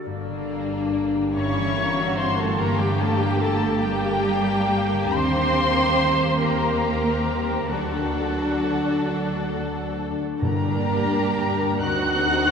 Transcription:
Already playing: harp D4
0.06 double bass section G1, harp G2, violin section A#3 D4
0.28 harp D3
0.50 harp G3
0.71 harp D4
0.93 harp A#4
1.15 harp G4
1.35 harp G2, violin section A#3 E4 C#6, cello section C#4, viola section C#5
1.57 harp E3
1.77 harp G3
1.98 harp E4, violin section F#4
2.18 cello section C4, harp A#4, viola section C5, violin section C6
2.38 cello section A3, harp G4, viola section A4, violin section A5
2.59 harp G2, cello section A#3, violin section A#3 G4 A#5, viola section A#4
2.79 harp D3, cello section G3, viola section G4, violin section G5
2.99 harp G3, cello section A3, viola section A4, violin section A5
3.19 cello section G3, viola section G4, harp G4, violin section G5
3.40 cello section A3, viola section A4, harp A#4, violin section A5
3.61 harp G4
3.81 cello section G3, violin section A#3 G4 G5, viola section G4, harp A#4
4.04 harp G4
4.26 harp A#4
4.49 harp G4
4.71 harp G3
4.93 harp D3
5.13 double bass section D#2, harp D#3, violin section A#3 G4 C6, cello section C4, viola section C5
5.36 harp D#4
5.58 harp G3
5.79 harp G4
6.00 harp A#4
6.22 harp G4
6.41 cello section A#3, violin section A#3 G4 A#5, harp A#4, viola section A#4
6.63 harp G4
6.84 harp A#4
7.05 violin section C4, harp G4
7.29 harp G3
7.51 harp D#4
7.71 double bass section D2, harp D3, cello section F#3, violin section D4 A4 F#5, viola section F#4
7.95 harp A3
8.18 harp D4
8.41 harp D5
8.63 harp A4
8.86 harp D5
9.09 harp A4
9.31 harp D5
9.54 harp A4
9.76 harp D5
9.99 harp D4
10.22 harp A3
10.41 timpani G2, double bass section G2, harp G2, cello section A#3, violin section D4 G4 A#5, viola section A#4
10.67 harp D3
10.91 harp A#3
11.15 harp D4
11.39 harp D5
11.62 harp A#4
11.83 double bass section D2, harp D3, violin section C4 D#4 F#6, cello section F#4, viola section F#5
12.08 harp D4
12.31 harp A3

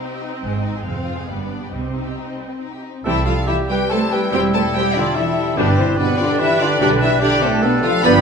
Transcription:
Already playing: viola section C4
0.00 violin section D#4 D#5
0.14 violin section G4
0.23 violin section D#4
0.34 violin section C4
0.43 double bass section G#1, cello section G#2, violin section G#3
0.54 violin section C4
0.64 violin section D#4
0.75 violin section G#4
0.85 double bass section F1, cello section F2, violin section G#3 F5
0.97 violin section C4
1.07 violin section F4
1.18 violin section G#4
1.28 double bass section G1, cello section G2, violin section G3 D5, viola section B3
1.41 violin section B3
1.52 violin section D4
1.62 violin section G4
1.72 double bass section C2, cello section C3, violin section G3 D#5, viola section C4
1.85 violin section C4
1.95 violin section D#4
2.06 violin section G4
2.18 violin section D#4
2.29 violin section C4
2.38 violin section G3
2.50 violin section C4
2.61 violin section D#4
2.73 violin section G4
2.83 violin section D#4
2.95 violin section C4
3.04 double bass section C2, cello section E3, bassoon G3, viola section G3 C4, clarinet C4, violin section E4 E5, french horn section E4, flute G4, cor anglais A4
3.26 cello section F3, violin section F4 F5, french horn section F4, flute A4
3.47 cello section E3, violin section E4 E5, french horn section E4, cor anglais G4, flute G4
3.69 cello section G3, violin section G4 G5, french horn section G4, flute B4
3.90 cello section A3, cor anglais E4, violin section A4 A5, french horn section A4, flute C5
4.11 cello section G3, violin section G4 G5, french horn section G4, flute B4
4.32 double bass section E1, cello section G3, viola section G3 C4, french horn section G4, violin section G4 G5, flute C5
4.54 cello section A3, violin section A4 A5, french horn section A4, flute C5
4.74 cello section G3, violin section G4 G5, french horn section G4, flute C5
4.95 cello section D3, violin section D4 D5, french horn section D4, flute F4
5.15 cello section E3, violin section E4 E5, french horn section E4, flute G4, cor anglais A4
5.56 double bass section G1, cello section B2, bassoon G3, viola section G3 D4, french horn section B3, violin section B3 B4, flute D4, clarinet D4, cor anglais G4
5.77 cello section C3, french horn section C4, violin section C4 C5, flute E4
5.97 cello section B2, violin section B3 B4, french horn section B3, flute D4, cor anglais D5
6.19 cello section D3, violin section D4 D5, french horn section D4, flute F4
6.39 cello section E3, violin section E4 E5, french horn section E4, flute G4, cor anglais B4
6.60 cello section D3, french horn section D4, violin section D4 D5, flute F4
6.80 double bass section B1, cello section D3, viola section G3 D4, violin section D4 D5, french horn section D4, flute G4, cor anglais B4
7.01 cello section E3, violin section E4 E5, french horn section E4, flute G4
7.21 cello section D3, violin section D4 D5, french horn section D4, cor anglais G4, flute G4
7.42 cello section A2, violin section A3 A4, french horn section A3, flute C4
7.62 cello section B2, violin section B3 B4, french horn section B3, flute D4, cor anglais A4
7.83 cello section F3, violin section F4 F5, french horn section F4, flute A4
8.04 double bass section G1, viola section F3 D4, bassoon G3, cello section B3, clarinet F4, cor anglais G4, violin section B4 B5, french horn section B4, flute D5

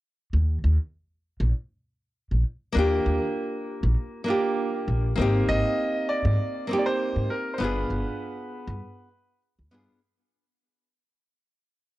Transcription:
0.33 upright bass D#2
0.64 upright bass D#2
1.40 upright bass A#1
2.31 upright bass A#1
2.73 upright bass D#2, nylon-string guitar A#3 D4
2.77 nylon-string guitar F4 G4
3.06 upright bass D#2
3.83 upright bass A#1
4.24 nylon-string guitar A#3 D4
4.28 nylon-string guitar F4 G4
4.88 upright bass A#1
5.15 upright bass G#1, nylon-string guitar A#3 C4 D#4
5.21 nylon-string guitar G4
5.48 upright bass G#1, grand piano D#5
6.09 grand piano D5
6.25 upright bass G#2
6.67 nylon-string guitar A#3 C4 D#4
6.73 nylon-string guitar G4
6.78 grand piano D5
6.86 grand piano C5
7.16 upright bass G#2
7.30 grand piano A#4
7.54 grand piano C5
7.58 upright bass G1, nylon-string guitar B3 D4 F4, grand piano B4
7.64 nylon-string guitar G#4
7.90 upright bass G1
8.68 upright bass G2
9.59 upright bass D2
9.71 upright bass G2, nylon-string guitar B3 D4 F4 G#4

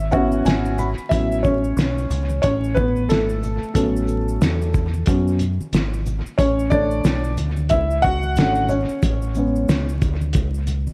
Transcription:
Already playing: fingered electric bass G#1
0.11 upright piano B3 C#4 E4 F#4 F#5, kick, shaker, maracas
0.32 high conga, maracas
0.45 fingered electric bass G#1, upright piano G#5, snare, closed hi-hat, maracas
0.65 maracas
0.78 upright piano B5, low conga, maracas, shaker
0.98 muted fingered electric bass stroke, maracas
1.09 fingered electric bass A1, upright piano F#3 B3 C#4 E4 E5, kick, closed hi-hat, maracas
1.32 maracas
1.43 upright piano C#4 C#5, kick, high conga, shaker, maracas
1.64 maracas
1.77 fingered electric bass B1, snare, closed hi-hat, maracas
1.98 maracas
2.10 fingered electric bass C#2, closed hi-hat, low conga, maracas, shaker
2.29 high conga, maracas
2.42 fingered electric bass A1, upright piano C#4 C#5, kick, closed hi-hat, maracas
2.64 maracas
2.75 upright piano B3 B4, kick, low conga, shaker, maracas
2.96 high conga, maracas
3.09 fingered electric bass G#1, upright piano A3 A4, snare, closed hi-hat, maracas
3.29 maracas
3.43 low conga, maracas, shaker
3.62 muted fingered electric bass stroke, maracas
3.74 fingered electric bass A1, upright piano F#3 A3 B3 C#4 A4, kick, closed hi-hat, maracas
3.96 maracas
4.07 high conga, shaker, maracas
4.28 maracas
4.41 fingered electric bass E2, snare, closed hi-hat, maracas
4.62 maracas
4.74 kick, low conga, maracas, shaker
4.94 high conga, maracas
5.06 fingered electric bass F#2, upright piano F#3 B3 C#4, kick, closed hi-hat, maracas
5.28 maracas
5.39 closed hi-hat, low conga, shaker, maracas
5.59 muted fingered electric bass stroke, high conga, maracas
5.72 fingered electric bass G#1, snare, closed hi-hat, maracas
5.93 maracas
6.06 low conga, shaker, maracas
6.26 maracas
6.38 fingered electric bass A1, upright piano C#4 C#5, kick, closed hi-hat, maracas
6.59 maracas
6.70 upright piano D3 A3 D4 C#5 D5, kick, high conga, shaker, maracas
6.91 maracas
7.04 fingered electric bass B1, snare, closed hi-hat, maracas
7.24 maracas
7.37 fingered electric bass D2, closed hi-hat, low conga, maracas, shaker
7.57 high conga, maracas
7.69 fingered electric bass C#2, upright piano E4 E5, kick, closed hi-hat, maracas
7.91 maracas
8.02 upright piano F#4 F#5, kick, closed hi-hat, low conga, shaker, maracas
8.23 high conga, maracas
8.36 fingered electric bass G#1, upright piano D3 A3 C#4, snare, closed hi-hat, maracas
8.55 maracas
8.69 upright piano C#4 C#5, low conga, maracas, shaker
8.89 maracas
9.02 fingered electric bass A1, kick, closed hi-hat, maracas
9.22 maracas
9.35 upright piano C#3 G#3 B3, high conga, shaker, maracas
9.56 maracas
9.69 fingered electric bass C#2, snare, closed hi-hat, maracas
9.89 maracas
10.02 fingered electric bass D2, kick, closed hi-hat, low conga, shaker, maracas
10.21 high conga, maracas
10.33 fingered electric bass C#2, kick, closed hi-hat, maracas
10.54 maracas
10.67 closed hi-hat, low conga, shaker, maracas
10.87 muted fingered electric bass stroke, high conga, maracas

